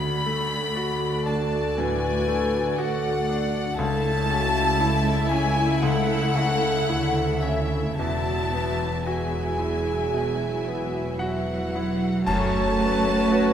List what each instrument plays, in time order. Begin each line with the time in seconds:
Already playing: grand piano D2, cello section D2, double bass section D2, harp D3 A3 F#4 A4, viola section A3 F#4, french horn section F#4, violin section D5 B5, violin B5
0.06 harp D4
0.23 grand piano A3, french horn section A4
0.40 harp A4
0.74 grand piano F#4, french horn section A4, harp D5
1.08 harp F#4
1.26 grand piano D4, violin section A5, violin A5
1.43 harp D4
1.76 grand piano A2, harp A3, french horn section B4, violin G#5, violin section G#5
2.11 harp D4
2.28 grand piano A3
2.45 harp A4
2.77 grand piano F#4, french horn section A4, harp D5, violin F#5, violin section F#5
3.12 harp F#4
3.29 grand piano D4
3.45 harp D4
3.77 cello section C#2, grand piano C#2, double bass section C#2, harp C#3, viola section A3 E4, french horn section A4, violin section E5 A5, violin A5
4.12 harp C#4
4.29 grand piano C#4, french horn section F#4
4.45 harp E4
4.80 grand piano E4, french horn section E4, harp C#5
5.13 harp E4
5.29 grand piano C#4, violin G#5, violin section G#5
5.48 harp C#4
5.81 grand piano C#2, harp C#3, french horn section A4, violin F#5, violin section F#5
6.17 harp A3
6.35 grand piano C#3, french horn section A4
6.53 harp E4
6.88 cello section D2, double bass section D2, grand piano E4, french horn section A4, harp C#5
7.23 harp E4
7.40 grand piano C#4, violin E5
7.45 french horn section A4, violin section E5
7.61 harp C#4
7.97 double bass section E1, cello section E2, grand piano E2, harp E3, viola section F#3 E4, violin section E5 A5, violin A5
8.01 french horn section F#4
8.34 harp E4
8.54 grand piano B3
8.71 harp B4
9.05 viola section F#3 E4, grand piano F#4, french horn section G#4, harp E5, violin section E5 G#5, violin G#5
9.40 harp F#4
9.59 grand piano E4
9.76 harp E4
10.11 grand piano B2, harp B3
10.48 harp E4
10.68 grand piano B3, french horn section F#4
10.83 harp B4
11.19 cello section F#3, french horn section E4, grand piano F#4 F#5, flute B4, harp E5, violin section F#5
11.55 harp F#4
11.75 grand piano E4
11.91 harp E4
12.26 double bass section F#2, harp F#2, grand piano F#2 A5, french horn section F#3 C#4, cello section A3, clarinet F#4, violin section F#4 A5, flute C#5, viola section C#5, oboe C#5, concert bass drum, crash
12.61 harp F#3
12.79 grand piano F#3, viola section B4
12.96 harp F#4
13.30 harp C#4, grand piano F#4